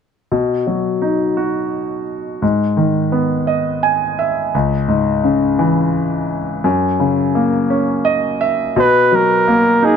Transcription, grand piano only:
0.32 2.39 B2 soft
0.67 2.04 F#3 soft
1.02 2.39 D#4 soft
1.37 2.39 F#4 soft
2.42 4.50 G#2 soft
2.77 4.14 D#3 soft
3.12 4.49 B3 soft
3.47 4.50 D#5 soft
3.83 4.16 G#5 soft
4.19 4.51 E5 soft
4.55 6.61 C#2 soft
4.88 6.25 G#2 soft
5.24 6.61 C#3 soft
5.59 6.61 E3 soft
6.64 8.72 F#2 soft
7.00 8.36 C#3 soft
7.35 8.72 A#3 soft
7.70 8.73 C#4 soft
8.05 8.38 D#5 medium
8.41 8.73 E5 soft
8.76 9.97 B2 medium
9.12 9.97 F#3 soft
9.48 9.97 A#3 soft
9.82 9.97 D#4 soft

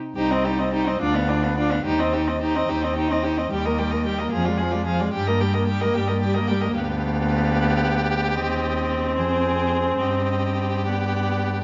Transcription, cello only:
0.17 0.91 C2 medium
1.01 1.75 D2 medium
1.85 2.59 D#2 medium
2.69 3.41 D#2 medium
3.51 4.23 D#2 medium
4.32 5.03 F2 medium
5.13 5.85 G2 medium
5.94 6.65 G2 medium
6.75 8.38 D2 medium
8.36 9.20 D#2 medium
9.18 10.01 F2 medium
10.02 11.64 G2 medium

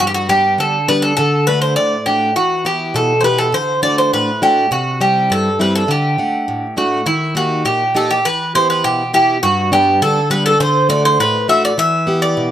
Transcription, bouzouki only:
0.00 0.07 F#4 medium
0.07 0.14 G4 medium
0.14 0.29 F#4 medium
0.29 0.57 G4 medium
0.60 0.87 A4 medium
0.88 1.02 B4 medium
1.02 1.15 A4 medium
1.17 1.45 A4 medium
1.47 1.61 B4 medium
1.62 1.76 C5 medium
1.76 2.04 D5 medium
2.06 2.34 G4 medium
2.36 2.63 F#4 medium
2.66 2.95 G4 medium
2.96 3.22 A4 medium
3.21 3.38 B4 medium
3.21 3.24 C5 medium
3.38 3.52 A4 medium
3.54 3.81 C5 medium
3.83 3.97 D5 medium
3.98 4.12 C5 medium
4.13 4.40 B4 medium
4.43 4.70 G4 medium
4.72 4.99 F#4 medium
5.01 5.31 G4 medium
5.32 5.58 A4 medium
5.61 5.74 B4 medium
5.75 5.90 A4 medium
5.91 6.74 G4 medium
6.78 7.05 F#4 medium
7.06 7.36 E4 medium
7.37 7.65 F#4 medium
7.65 7.96 G4 medium
7.96 8.10 A4 medium
8.11 8.25 G4 medium
8.25 8.52 B4 medium
8.55 8.68 C5 medium
8.70 8.83 B4 medium
8.84 9.11 G4 medium
9.14 9.42 G4 medium
9.43 9.72 F#4 medium
9.73 10.00 G4 medium
10.02 10.30 A4 medium
10.31 10.44 B4 medium
10.46 10.59 A4 medium
10.60 10.88 C5 medium
10.90 11.03 D5 medium
11.05 11.18 C5 medium
11.20 11.47 B4 medium
11.49 11.62 E5 medium
11.65 11.78 D5 medium
11.79 12.19 E5 loud
12.22 12.51 D5 medium

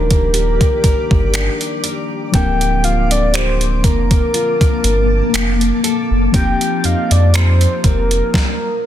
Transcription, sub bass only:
0.00 0.60 D#1 medium
0.84 0.95 G1 soft
1.11 1.49 G1 medium
2.34 3.85 D1 loud
3.84 4.22 F1 medium
4.84 5.22 G1 medium
5.34 5.72 F1 medium
6.11 6.28 F#1 medium
6.34 6.54 F1 loud
6.84 6.95 F2 soft
7.11 7.66 F2 loud
7.84 8.22 F1 medium

